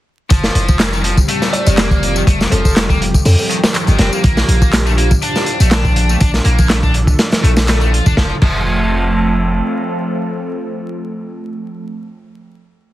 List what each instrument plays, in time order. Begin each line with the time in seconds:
0.29 808-style bass F1, analog synth pad F3 G3 C4 G4, distorted electric guitar F3, kick, closed hi-hat, tambourine
0.44 snare, tambourine
0.55 808-style bass F1, closed hi-hat
0.68 kick, tambourine
0.80 snare, clap, closed hi-hat, tambourine
0.93 distorted electric guitar D#3, tambourine
1.04 distorted electric guitar F3, closed hi-hat
1.17 kick, tambourine
1.28 distorted electric guitar A3, closed hi-hat, tambourine
1.42 snare, tambourine
1.53 kalimba D5, closed hi-hat
1.66 808-style bass F1, distorted electric guitar D#3, kalimba D5, closed hi-hat, tambourine
1.77 distorted electric guitar A#3, snare, clap, closed hi-hat, tambourine
1.91 kick, tambourine
2.03 closed hi-hat
2.16 distorted electric guitar D#3, tambourine
2.27 808-style bass F1, distorted electric guitar A3, kick, closed hi-hat, tambourine
2.41 snare, tambourine
2.52 808-style bass F1, distorted electric guitar F3, kalimba A4, closed hi-hat
2.65 kalimba A4, kick, tambourine
2.76 distorted electric guitar D#3, snare, clap, closed hi-hat, tambourine
2.90 distorted electric guitar A#3, kick, tambourine
3.02 closed hi-hat
3.14 kick, tambourine
3.25 808-style bass F2, kalimba A4, open hi-hat, tambourine
3.39 kalimba A4, tambourine
3.50 distorted electric guitar D#3, closed hi-hat
3.64 snare, tambourine
3.74 distorted electric guitar D#3, clap, closed hi-hat, tambourine
3.87 808-style bass G1, distorted electric guitar D#3, closed hi-hat, tambourine
3.99 808-style bass F1, distorted electric guitar C4, snare, closed hi-hat
4.13 distorted electric guitar A#3, tambourine
4.24 808-style bass A#1, distorted electric guitar A#3, analog synth pad D4, kick, closed hi-hat, tambourine
4.37 snare, tambourine
4.48 808-style bass A#1, closed hi-hat
4.62 kick, tambourine
4.73 snare, clap, closed hi-hat, tambourine
4.86 distorted electric guitar A3, tambourine
4.98 distorted electric guitar A#3, closed hi-hat
5.11 kick, tambourine
5.22 distorted electric guitar D4, closed hi-hat, tambourine
5.36 snare, tambourine
5.46 closed hi-hat
5.60 808-style bass A#1, distorted electric guitar A3, closed hi-hat, tambourine
5.71 distorted electric guitar D4, snare, clap, closed hi-hat, tambourine
5.85 kick, tambourine
5.96 closed hi-hat
6.09 distorted electric guitar A3, tambourine
6.20 808-style bass A#1, distorted electric guitar D4, analog synth pad A4, kick, closed hi-hat, tambourine
6.34 snare, tambourine
6.45 808-style bass A#1, distorted electric guitar A#3, closed hi-hat
6.59 kick, tambourine
6.70 distorted electric guitar A3, snare, clap, closed hi-hat, tambourine
6.83 distorted electric guitar D4, kick, tambourine
6.94 closed hi-hat
7.07 kick, tambourine
7.19 snare, closed hi-hat, tambourine
7.32 snare, closed hi-hat, tambourine
7.43 808-style bass A#1, distorted electric guitar A3, closed hi-hat
7.57 snare, tambourine
7.68 distorted electric guitar A3, snare, clap, closed hi-hat, tambourine
7.81 distorted electric guitar A3, tambourine
7.93 distorted electric guitar F4, closed hi-hat
8.06 808-style bass G1, distorted electric guitar D4, kick, tambourine
8.17 808-style bass F1, analog synth pad F3 A3 C4 A4, distorted electric guitar F3, kick, snare
8.42 808-style bass F1, distorted electric guitar F3, kick, crash